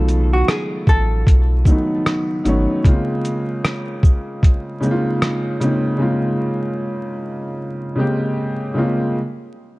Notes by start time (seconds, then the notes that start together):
Already playing: B1 D#3 F#3 A3 B3 F4 A4
0.09 closed hi-hat, shaker
0.33 F#4
0.48 G#4, cross-stick, closed hi-hat
0.87 A1 A4, kick, shaker
1.27 B1, kick, closed hi-hat
1.65 D#3 F#3 A3 B3, kick, shaker
1.70 D#4
2.06 cross-stick, closed hi-hat
2.44 G#1 D#3 F#3 A3 B3, closed hi-hat, shaker
2.48 C#4
2.84 C#3 G#3 A#3 C4, kick, closed hi-hat
2.88 F4
3.25 closed hi-hat, shaker
3.65 cross-stick, closed hi-hat
4.03 kick, shaker
4.43 kick, closed hi-hat
4.80 C#3 G#3 A#3 C4, shaker
4.85 D#4
4.91 F4
5.22 cross-stick, closed hi-hat
5.60 C#3 G#3 A#3 C4 D#4, closed hi-hat, shaker
5.98 C#3 G#3 A#3 C4 F4
7.96 C#3 G#3 A#3 C4 G4
8.74 C#3 G#3 A#3 C4
8.78 F4